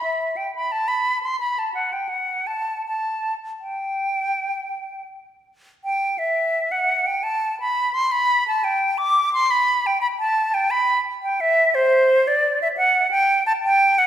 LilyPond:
\new Staff \with { instrumentName = "Flute" } { \time 4/4 \key g \major \tempo 4 = 87 e''8 g''16 b''16 a''16 b''8 c'''16 b''16 a''16 fis''16 g''16 fis''8 a''8 | a''8. r16 g''2 r4 | g''8 e''8. fis''8 g''16 a''8 b''8 c'''16 b''8 a''16 | g''8 d'''8 c'''16 b''8 g''16 b''16 a''8 g''16 b''8. g''16 |
e''8 c''8. d''8 e''16 fis''8 g''8 a''16 g''8 fis''16 | }